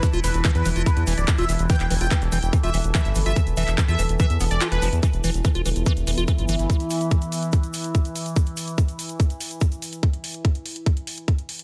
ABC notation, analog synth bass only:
X:1
M:4/4
L:1/16
Q:1/4=144
K:C
V:1 name="Analog synth bass" clef=bass
z E,,, E,,, E,,, z E,, E,,, E,,, z E,, E,,, D,,, z E,,, E,,, E,,, | z E,,, E,,, E,,, z E,,, E,,, E,,, z E,,, E,,, E,,, z G,,, G,,, G,,, | z E,,, E,,, E,,, z E,, E,,, E,,, z E,, E,,, E,,, z E,,, F,,, E,, | z E,,, E,,, E,,, z E,,, E,,, E,,, z E,,, E,,, E,,, z G,,, G,,, G,,, |
z16 | z16 | z16 |]